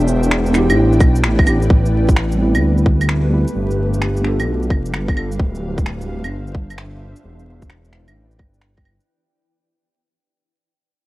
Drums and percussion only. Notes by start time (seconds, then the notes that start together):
0.08 cabasa
0.23 shaker
0.31 finger snap
0.46 shaker
0.54 finger snap, cabasa
0.70 claves, shaker
0.93 shaker
1.00 kick, cabasa, claves
1.16 shaker
1.24 finger snap
1.39 kick, claves
1.47 cabasa, claves
1.62 shaker
1.70 kick
1.86 shaker
2.09 kick, shaker
2.16 finger snap
2.32 shaker
2.55 claves, shaker
2.78 shaker
2.86 kick
3.01 claves, shaker
3.09 finger snap
3.48 shaker
3.71 shaker
3.94 shaker
4.02 finger snap
4.17 shaker
4.24 finger snap
4.40 claves, shaker
4.63 shaker
4.70 kick, claves
4.86 shaker
4.94 finger snap
5.08 kick, claves
5.17 claves
5.32 shaker
5.39 kick
5.55 shaker
5.78 kick, shaker
5.86 finger snap
6.01 shaker
6.24 claves, shaker
6.47 shaker
6.55 kick
6.70 claves, shaker
6.78 finger snap
7.16 shaker
7.39 shaker
7.62 kick, shaker
7.70 finger snap
7.85 shaker
7.93 finger snap
8.08 claves, shaker
8.31 shaker
8.39 kick, claves
8.54 shaker
8.62 finger snap
8.77 kick, claves
8.85 claves
9.00 shaker